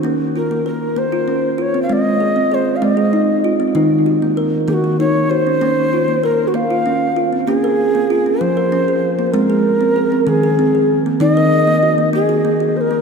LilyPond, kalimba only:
<<
  \new Staff \with { instrumentName = "Kalimba" } { \time 6/8 \key bes \minor \tempo 4. = 64 des'8 f'16 bes16 bes'8 bes16 f'16 des'8 f'16 c'16 | c'8 aes'16 c'16 aes'8 c'16 aes'16 ees'8 f'16 c'16 | ees'8 ges'16 bes16 bes'8 bes16 ges'16 ees'8 ges'16 des'16 | des'8 f'16 bes16 bes'8 r16 f'16 des'8 f'16 c'16 |
des'16 bes'8 bes16 f'16 des'8 bes'16 des'16 aes'8 bes16 | c'16 aes'8 c'16 aes'16 c'8 aes'16 c'16 aes'8 bes16 | ees'16 bes'8 bes16 ges'16 bes8 ges'16 bes16 ges'8 bes16 | }
  \new Staff \with { instrumentName = "Kalimba" } { \clef bass \time 6/8 \key bes \minor bes4. r4. | aes4. aes4. | ees4. ees4. | bes4. bes4. |
bes4. f4. | aes4. ees4. | ees4. bes4. | }
>>